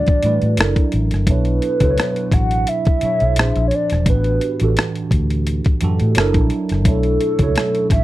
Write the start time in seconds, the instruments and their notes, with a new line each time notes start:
Already playing: tine electric piano A2 E3 G3 D4 F#4 B4, soft synth lead D5
0.07 kick, closed hi-hat
0.23 tine electric piano A2 E3 G3 D4 F#4 B4, fingered electric bass A2, closed hi-hat
0.42 fingered electric bass A2, closed hi-hat
0.57 fingered electric bass F#1, tine electric piano F#3 D4 E4 A4, cross-stick, closed hi-hat
0.61 tine electric piano A#4
0.76 kick, closed hi-hat
0.92 fingered electric bass A1, closed hi-hat
1.11 fingered electric bass G1, cross-stick, closed hi-hat
1.27 fingered electric bass B1, tine electric piano B2 F#3 D4 E4 A4, soft synth lead B4, kick, closed hi-hat
1.31 tine electric piano C#5
1.45 closed hi-hat
1.62 closed hi-hat
1.80 fingered electric bass C#2, tine electric piano B2 F#3 D4 E4 A4, kick, closed hi-hat
1.84 tine electric piano C5
1.91 tine electric piano C#5
1.98 cross-stick, closed hi-hat
2.16 closed hi-hat
2.32 fingered electric bass A1, soft synth lead F#5, kick, cross-stick, closed hi-hat
2.51 closed hi-hat
2.67 soft synth lead E5, closed hi-hat
2.85 kick, closed hi-hat
3.01 tine electric piano B2 F#3 D4 E4 A4, muted fingered electric bass stroke, closed hi-hat
3.05 tine electric piano C#5
3.20 fingered electric bass B1, closed hi-hat
3.36 fingered electric bass A#1, tine electric piano A#2 F3 C4 G#4 C5, cross-stick, closed hi-hat
3.45 tine electric piano D4
3.56 fingered electric bass A#1, closed hi-hat
3.68 soft synth lead C#5, closed hi-hat
3.75 soft synth lead D5
3.90 fingered electric bass E1, cross-stick, closed hi-hat
4.06 fingered electric bass A1, tine electric piano A2 E3 D4 F#4 G4 B4, soft synth lead B4, kick, closed hi-hat
4.24 closed hi-hat
4.41 closed hi-hat
4.60 fingered electric bass A1, tine electric piano A2 E3 D4 F#4 G4, closed hi-hat
4.64 tine electric piano A4
4.77 cross-stick, closed hi-hat
4.95 closed hi-hat
5.11 fingered electric bass D2, kick, closed hi-hat
5.30 closed hi-hat
5.47 closed hi-hat
5.65 kick, closed hi-hat
5.81 fingered electric bass F#2, tine electric piano A2 E3 D4 F#4 G4 A4, closed hi-hat
6.00 fingered electric bass A2, closed hi-hat
6.15 fingered electric bass F#1, tine electric piano F#3 D4 E4 A4, cross-stick, closed hi-hat
6.19 tine electric piano A#4
6.34 fingered electric bass A#1, kick, closed hi-hat
6.50 closed hi-hat
6.69 fingered electric bass F#1, cross-stick, closed hi-hat
6.85 fingered electric bass B1, tine electric piano B2 F#3 D4 E4 A4 C#5, soft synth lead A4, kick, closed hi-hat
7.03 closed hi-hat
7.21 closed hi-hat
7.39 fingered electric bass C#2, tine electric piano B2 F#3 C#4 E4 A4, kick, closed hi-hat
7.43 tine electric piano C#5
7.48 tine electric piano D4
7.56 cross-stick, closed hi-hat
7.75 closed hi-hat
7.90 fingered electric bass A1, soft synth lead E5, kick, cross-stick, closed hi-hat